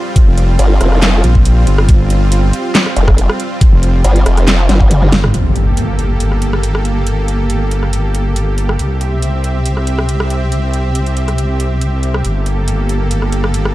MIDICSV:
0, 0, Header, 1, 6, 480
1, 0, Start_track
1, 0, Key_signature, -2, "minor"
1, 0, Tempo, 431655
1, 177, Time_signature, 4, 2, 24, 8
1, 15284, End_track
2, 0, Start_track
2, 0, Title_t, "Supersaw synth"
2, 0, Program_c, 0, 81
2, 0, Note_on_c, 0, 55, 86
2, 0, Note_on_c, 0, 60, 76
2, 0, Note_on_c, 0, 65, 94
2, 5893, Note_off_c, 0, 55, 0
2, 5893, Note_off_c, 0, 60, 0
2, 5918, Note_off_c, 0, 65, 0
2, 5938, Note_on_c, 0, 58, 80
2, 5938, Note_on_c, 0, 67, 72
2, 5938, Note_on_c, 0, 69, 85
2, 9739, Note_off_c, 0, 58, 0
2, 9739, Note_off_c, 0, 69, 0
2, 9777, Note_on_c, 0, 60, 78
2, 9777, Note_on_c, 0, 76, 89
2, 13579, Note_off_c, 0, 60, 0
2, 13579, Note_off_c, 0, 76, 0
2, 13616, Note_on_c, 0, 69, 90
2, 13617, Note_on_c, 0, 58, 80
2, 15284, Note_off_c, 0, 58, 0
2, 15284, Note_off_c, 0, 67, 0
2, 15284, Note_off_c, 0, 69, 0
2, 15284, End_track
3, 0, Start_track
3, 0, Title_t, "Wobble bass"
3, 0, Program_c, 1, 39
3, 303, Note_on_c, 1, 29, 98
3, 639, Note_off_c, 1, 29, 0
3, 1377, Note_on_c, 1, 34, 100
3, 1839, Note_off_c, 1, 34, 0
3, 1857, Note_on_c, 1, 31, 101
3, 2079, Note_off_c, 1, 31, 0
3, 2097, Note_on_c, 1, 31, 96
3, 2799, Note_off_c, 1, 31, 0
3, 4143, Note_on_c, 1, 29, 100
3, 4479, Note_off_c, 1, 29, 0
3, 5697, Note_on_c, 1, 31, 99
3, 5919, Note_off_c, 1, 31, 0
3, 5937, Note_on_c, 1, 31, 84
3, 9754, Note_off_c, 1, 31, 0
3, 9777, Note_on_c, 1, 36, 85
3, 13594, Note_off_c, 1, 36, 0
3, 13617, Note_on_c, 1, 31, 87
3, 15284, Note_off_c, 1, 31, 0
3, 15284, End_track
4, 0, Start_track
4, 0, Title_t, "Wobble bass"
4, 0, Program_c, 2, 39
4, 657, Note_on_c, 2, 31, 105
4, 879, Note_off_c, 2, 31, 0
4, 897, Note_on_c, 2, 29, 97
4, 1359, Note_off_c, 2, 29, 0
4, 3297, Note_on_c, 2, 29, 103
4, 3643, Note_off_c, 2, 29, 0
4, 4497, Note_on_c, 2, 31, 101
4, 4719, Note_off_c, 2, 31, 0
4, 4738, Note_on_c, 2, 29, 101
4, 5199, Note_off_c, 2, 29, 0
4, 5217, Note_on_c, 2, 31, 103
4, 5679, Note_off_c, 2, 31, 0
4, 15284, End_track
5, 0, Start_track
5, 0, Title_t, "Impact"
5, 0, Program_c, 3, 103
5, 5937, Note_on_c, 3, 60, 70
5, 7857, Note_off_c, 3, 60, 0
5, 15284, End_track
6, 0, Start_track
6, 0, Title_t, "Drums"
6, 177, Note_on_c, 9, 36, 114
6, 178, Note_on_c, 9, 42, 73
6, 288, Note_off_c, 9, 36, 0
6, 289, Note_off_c, 9, 42, 0
6, 417, Note_on_c, 9, 42, 53
6, 529, Note_off_c, 9, 42, 0
6, 657, Note_on_c, 9, 42, 82
6, 768, Note_off_c, 9, 42, 0
6, 897, Note_on_c, 9, 37, 63
6, 897, Note_on_c, 9, 42, 54
6, 1008, Note_off_c, 9, 37, 0
6, 1008, Note_off_c, 9, 42, 0
6, 1024, Note_on_c, 9, 37, 56
6, 1135, Note_off_c, 9, 37, 0
6, 1137, Note_on_c, 9, 38, 112
6, 1137, Note_on_c, 9, 39, 85
6, 1137, Note_on_c, 9, 42, 79
6, 1249, Note_off_c, 9, 38, 0
6, 1249, Note_off_c, 9, 39, 0
6, 1249, Note_off_c, 9, 42, 0
6, 1377, Note_on_c, 9, 42, 64
6, 1489, Note_off_c, 9, 42, 0
6, 1503, Note_on_c, 9, 36, 62
6, 1615, Note_off_c, 9, 36, 0
6, 1617, Note_on_c, 9, 42, 79
6, 1728, Note_off_c, 9, 42, 0
6, 1857, Note_on_c, 9, 42, 54
6, 1968, Note_off_c, 9, 42, 0
6, 1983, Note_on_c, 9, 37, 83
6, 2095, Note_off_c, 9, 37, 0
6, 2097, Note_on_c, 9, 36, 118
6, 2097, Note_on_c, 9, 42, 78
6, 2208, Note_off_c, 9, 36, 0
6, 2209, Note_off_c, 9, 42, 0
6, 2337, Note_on_c, 9, 42, 55
6, 2448, Note_off_c, 9, 42, 0
6, 2577, Note_on_c, 9, 42, 86
6, 2688, Note_off_c, 9, 42, 0
6, 2817, Note_on_c, 9, 42, 55
6, 2928, Note_off_c, 9, 42, 0
6, 3057, Note_on_c, 9, 38, 117
6, 3057, Note_on_c, 9, 39, 89
6, 3057, Note_on_c, 9, 42, 80
6, 3168, Note_off_c, 9, 38, 0
6, 3168, Note_off_c, 9, 39, 0
6, 3168, Note_off_c, 9, 42, 0
6, 3183, Note_on_c, 9, 37, 56
6, 3294, Note_off_c, 9, 37, 0
6, 3297, Note_on_c, 9, 42, 64
6, 3408, Note_off_c, 9, 42, 0
6, 3423, Note_on_c, 9, 36, 61
6, 3423, Note_on_c, 9, 37, 85
6, 3534, Note_off_c, 9, 36, 0
6, 3534, Note_off_c, 9, 37, 0
6, 3537, Note_on_c, 9, 42, 82
6, 3648, Note_off_c, 9, 42, 0
6, 3663, Note_on_c, 9, 37, 87
6, 3775, Note_off_c, 9, 37, 0
6, 3777, Note_on_c, 9, 42, 56
6, 3888, Note_off_c, 9, 42, 0
6, 4017, Note_on_c, 9, 36, 121
6, 4017, Note_on_c, 9, 42, 81
6, 4128, Note_off_c, 9, 36, 0
6, 4128, Note_off_c, 9, 42, 0
6, 4257, Note_on_c, 9, 42, 57
6, 4368, Note_off_c, 9, 42, 0
6, 4497, Note_on_c, 9, 42, 87
6, 4609, Note_off_c, 9, 42, 0
6, 4624, Note_on_c, 9, 42, 41
6, 4735, Note_off_c, 9, 42, 0
6, 4737, Note_on_c, 9, 37, 65
6, 4737, Note_on_c, 9, 42, 56
6, 4849, Note_off_c, 9, 37, 0
6, 4849, Note_off_c, 9, 42, 0
6, 4864, Note_on_c, 9, 37, 58
6, 4864, Note_on_c, 9, 42, 39
6, 4975, Note_off_c, 9, 37, 0
6, 4975, Note_off_c, 9, 42, 0
6, 4977, Note_on_c, 9, 38, 114
6, 4977, Note_on_c, 9, 39, 93
6, 4977, Note_on_c, 9, 42, 87
6, 5089, Note_off_c, 9, 38, 0
6, 5089, Note_off_c, 9, 39, 0
6, 5089, Note_off_c, 9, 42, 0
6, 5218, Note_on_c, 9, 38, 60
6, 5218, Note_on_c, 9, 42, 64
6, 5218, Note_on_c, 9, 48, 65
6, 5329, Note_off_c, 9, 38, 0
6, 5329, Note_off_c, 9, 42, 0
6, 5329, Note_off_c, 9, 48, 0
6, 5344, Note_on_c, 9, 36, 61
6, 5455, Note_off_c, 9, 36, 0
6, 5457, Note_on_c, 9, 42, 83
6, 5457, Note_on_c, 9, 47, 80
6, 5569, Note_off_c, 9, 42, 0
6, 5569, Note_off_c, 9, 47, 0
6, 5584, Note_on_c, 9, 47, 80
6, 5695, Note_off_c, 9, 47, 0
6, 5698, Note_on_c, 9, 38, 96
6, 5698, Note_on_c, 9, 42, 58
6, 5809, Note_off_c, 9, 38, 0
6, 5809, Note_off_c, 9, 42, 0
6, 5824, Note_on_c, 9, 37, 86
6, 5824, Note_on_c, 9, 45, 91
6, 5936, Note_off_c, 9, 37, 0
6, 5936, Note_off_c, 9, 45, 0
6, 5938, Note_on_c, 9, 42, 73
6, 6049, Note_off_c, 9, 42, 0
6, 6178, Note_on_c, 9, 42, 49
6, 6290, Note_off_c, 9, 42, 0
6, 6418, Note_on_c, 9, 42, 75
6, 6529, Note_off_c, 9, 42, 0
6, 6658, Note_on_c, 9, 42, 48
6, 6769, Note_off_c, 9, 42, 0
6, 6898, Note_on_c, 9, 42, 75
6, 7009, Note_off_c, 9, 42, 0
6, 7024, Note_on_c, 9, 37, 48
6, 7135, Note_off_c, 9, 37, 0
6, 7137, Note_on_c, 9, 42, 57
6, 7248, Note_off_c, 9, 42, 0
6, 7264, Note_on_c, 9, 37, 69
6, 7375, Note_off_c, 9, 37, 0
6, 7377, Note_on_c, 9, 42, 73
6, 7488, Note_off_c, 9, 42, 0
6, 7504, Note_on_c, 9, 37, 74
6, 7615, Note_off_c, 9, 37, 0
6, 7618, Note_on_c, 9, 42, 49
6, 7729, Note_off_c, 9, 42, 0
6, 7857, Note_on_c, 9, 42, 68
6, 7969, Note_off_c, 9, 42, 0
6, 8097, Note_on_c, 9, 42, 47
6, 8209, Note_off_c, 9, 42, 0
6, 8337, Note_on_c, 9, 42, 73
6, 8448, Note_off_c, 9, 42, 0
6, 8577, Note_on_c, 9, 42, 48
6, 8689, Note_off_c, 9, 42, 0
6, 8704, Note_on_c, 9, 37, 45
6, 8815, Note_off_c, 9, 37, 0
6, 8818, Note_on_c, 9, 42, 72
6, 8929, Note_off_c, 9, 42, 0
6, 9058, Note_on_c, 9, 42, 56
6, 9169, Note_off_c, 9, 42, 0
6, 9298, Note_on_c, 9, 42, 74
6, 9409, Note_off_c, 9, 42, 0
6, 9538, Note_on_c, 9, 42, 49
6, 9649, Note_off_c, 9, 42, 0
6, 9664, Note_on_c, 9, 37, 72
6, 9775, Note_off_c, 9, 37, 0
6, 9778, Note_on_c, 9, 42, 69
6, 9889, Note_off_c, 9, 42, 0
6, 10018, Note_on_c, 9, 42, 48
6, 10129, Note_off_c, 9, 42, 0
6, 10257, Note_on_c, 9, 42, 68
6, 10369, Note_off_c, 9, 42, 0
6, 10497, Note_on_c, 9, 42, 46
6, 10609, Note_off_c, 9, 42, 0
6, 10737, Note_on_c, 9, 42, 69
6, 10848, Note_off_c, 9, 42, 0
6, 10864, Note_on_c, 9, 37, 46
6, 10975, Note_off_c, 9, 37, 0
6, 10977, Note_on_c, 9, 42, 55
6, 11088, Note_off_c, 9, 42, 0
6, 11103, Note_on_c, 9, 37, 68
6, 11214, Note_off_c, 9, 37, 0
6, 11217, Note_on_c, 9, 42, 70
6, 11328, Note_off_c, 9, 42, 0
6, 11344, Note_on_c, 9, 37, 73
6, 11455, Note_off_c, 9, 37, 0
6, 11457, Note_on_c, 9, 42, 47
6, 11568, Note_off_c, 9, 42, 0
6, 11697, Note_on_c, 9, 42, 66
6, 11809, Note_off_c, 9, 42, 0
6, 11937, Note_on_c, 9, 42, 45
6, 12049, Note_off_c, 9, 42, 0
6, 12178, Note_on_c, 9, 42, 68
6, 12289, Note_off_c, 9, 42, 0
6, 12304, Note_on_c, 9, 42, 33
6, 12415, Note_off_c, 9, 42, 0
6, 12418, Note_on_c, 9, 42, 47
6, 12529, Note_off_c, 9, 42, 0
6, 12544, Note_on_c, 9, 37, 47
6, 12544, Note_on_c, 9, 42, 32
6, 12655, Note_off_c, 9, 37, 0
6, 12655, Note_off_c, 9, 42, 0
6, 12658, Note_on_c, 9, 42, 70
6, 12769, Note_off_c, 9, 42, 0
6, 12897, Note_on_c, 9, 42, 54
6, 13008, Note_off_c, 9, 42, 0
6, 13138, Note_on_c, 9, 42, 67
6, 13249, Note_off_c, 9, 42, 0
6, 13377, Note_on_c, 9, 42, 45
6, 13489, Note_off_c, 9, 42, 0
6, 13504, Note_on_c, 9, 37, 69
6, 13615, Note_off_c, 9, 37, 0
6, 13617, Note_on_c, 9, 42, 66
6, 13728, Note_off_c, 9, 42, 0
6, 13857, Note_on_c, 9, 42, 45
6, 13968, Note_off_c, 9, 42, 0
6, 14097, Note_on_c, 9, 42, 70
6, 14208, Note_off_c, 9, 42, 0
6, 14337, Note_on_c, 9, 42, 46
6, 14448, Note_off_c, 9, 42, 0
6, 14577, Note_on_c, 9, 42, 68
6, 14688, Note_off_c, 9, 42, 0
6, 14703, Note_on_c, 9, 37, 47
6, 14814, Note_off_c, 9, 37, 0
6, 14817, Note_on_c, 9, 42, 51
6, 14928, Note_off_c, 9, 42, 0
6, 14943, Note_on_c, 9, 37, 72
6, 15054, Note_off_c, 9, 37, 0
6, 15057, Note_on_c, 9, 42, 67
6, 15168, Note_off_c, 9, 42, 0
6, 15183, Note_on_c, 9, 37, 76
6, 15284, Note_off_c, 9, 37, 0
6, 15284, End_track
0, 0, End_of_file